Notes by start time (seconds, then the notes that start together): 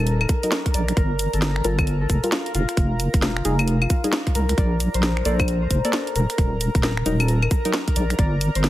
Already playing: D#1 A#4 C5 A#5
0.00 A4
0.07 closed hi-hat, shaker
0.21 A#4, claves
0.29 kick, closed hi-hat, shaker
0.43 F#3 D#4 A#4, closed hi-hat, shaker
0.52 snare, shaker
0.66 kick, closed hi-hat
0.74 A#1 D5, closed hi-hat, shaker
0.88 finger snap, closed hi-hat, shaker
0.97 G1 A#4, kick, closed hi-hat, shaker
1.19 closed hi-hat, shaker
1.33 G1 A4, closed hi-hat, shaker
1.42 snare, shaker
1.56 finger snap
1.64 G1 G3 F4 A4 A#4, closed hi-hat, shaker
1.79 kick, claves, shaker
1.87 closed hi-hat, shaker
2.01 A4
2.10 F1, kick, closed hi-hat, shaker
2.24 G3 F4 A#4, closed hi-hat, shaker
2.32 F4, snare, shaker
2.46 closed hi-hat
2.55 F1 F4, closed hi-hat, shaker
2.69 finger snap, closed hi-hat, shaker
2.77 F1, kick, closed hi-hat, shaker
3.00 closed hi-hat, shaker
3.14 F1, kick, closed hi-hat, shaker
3.22 F4, snare, shaker
3.37 finger snap
3.45 F1 G3 D#4 G#4, closed hi-hat, shaker
3.59 F4, closed hi-hat, claves, shaker
3.68 closed hi-hat, shaker
3.82 F4, claves
3.90 kick, closed hi-hat, shaker
4.04 G3 D#4 G#4, closed hi-hat, shaker
4.13 snare, shaker
4.27 kick, closed hi-hat
4.35 C2 A#4, closed hi-hat, shaker
4.49 finger snap, closed hi-hat, shaker
4.58 A#1 A#4 D5 A#5, kick, closed hi-hat, shaker
4.80 closed hi-hat, shaker
4.94 A#1 C5, closed hi-hat, shaker
5.03 snare, shaker
5.17 finger snap
5.25 A#1 A#3 A4 C5 D5, closed hi-hat, shaker
5.40 kick, claves, shaker
5.48 closed hi-hat, shaker
5.62 C5
5.71 F1, kick, closed hi-hat, shaker
5.85 A#3 A4 D5, closed hi-hat, shaker
5.93 A4, snare, shaker
6.07 closed hi-hat
6.16 D#1 A#4, closed hi-hat, shaker
6.30 finger snap, closed hi-hat, shaker
6.38 D#1, kick, closed hi-hat, shaker
6.61 closed hi-hat, shaker
6.75 D#1, kick, closed hi-hat, shaker
6.83 A#4, snare, shaker
6.97 finger snap
7.06 D#1 F#3 D#4 A#4, closed hi-hat, shaker
7.20 A4, closed hi-hat, claves, shaker
7.28 closed hi-hat, shaker
7.43 A#4, claves
7.51 kick, closed hi-hat, shaker
7.65 F#3 D#4 A#4, closed hi-hat, shaker
7.74 snare, shaker
7.88 kick, closed hi-hat
7.96 A#1 D5, closed hi-hat, shaker
8.10 finger snap, closed hi-hat, shaker
8.19 G1 D5, kick, closed hi-hat, shaker
8.41 closed hi-hat, shaker
8.55 G1 C5, closed hi-hat, shaker
8.64 snare, shaker